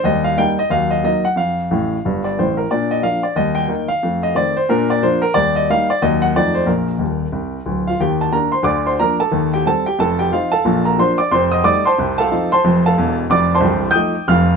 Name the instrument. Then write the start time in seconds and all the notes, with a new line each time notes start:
grand piano
0.04 D#2 G3 D#5
0.24 F5
0.38 G3 A#3 D#4 G5
0.59 D#5
0.70 D#2 F#3 F5
0.91 D#5
1.03 F#3 A#3 D#4 D#5
1.25 F#5
1.36 F2 F5
1.71 A1 A2
2.05 G1 G2
2.24 D5
2.39 A1 A2 C5
2.57 A#4
2.71 A#2 D4 D5
2.91 D#5
3.02 F3 A#3 D4 F5
3.23 D5
3.36 D#2 G3 D#5
3.55 G5
3.68 D#3 A#3 D#4
3.88 F5
4.03 F2 A3
4.23 D#5
4.35 D#3 A3 C4 D5
4.57 C5
4.69 A#2 D4 A#4
4.90 D5
5.03 F3 A#3 D4 C5
5.22 A#4
5.34 D#2 G3 D5
5.56 D#5
5.70 G3 A#3 D#4 F5
5.90 D5
6.02 D#2 F#3 A#3 D#4 D#5
6.22 F#5
6.36 F2 F3 A3 D#4 D5
6.55 C5
6.66 A#1 A#2 A#4
6.98 D#1 D#2
7.32 C2
7.66 D1 D2
7.87 F4 F5
8.00 D#2 D#3 G4 G5
8.21 A5
8.32 D#3 A#3 D4 A#4 A#5
8.52 C5 C6
8.63 D2 D3 D5 D6
8.86 C5 C6
8.99 F3 A#3 D4 A#4 A#5
9.20 A4 A5
9.31 D#2 D#3
9.54 G4 G5
9.66 G3 C4 A4 A5
9.86 G4 G5
9.99 F1 F2 A4 A5
10.19 G4 G5
10.32 F3 C4 D#4 F4 F5
10.52 A4 F5 A5
10.65 A#1 A#2
10.85 A#4 A#5
10.97 F3 A#3 D4 C5 C6
11.18 D5 D6
11.31 F1 F2 C5 C6
11.52 D#5 D#6
11.63 G3 A3 D#4 D5 D6
11.85 C5 A5 C6
11.98 C2 C3
12.18 A4 F5 A5
12.32 F3 C4 D#4
12.52 C5 A5 C6
12.64 F1 F2
12.86 A4 F5 A5
12.98 E1 E2
13.30 F1 F2 D5 D6
13.55 C5 A5 C6
13.60 C1 C2
13.91 G5 D#6 G6
13.95 F3 A3 D#4
14.28 F1 F2 F5 F6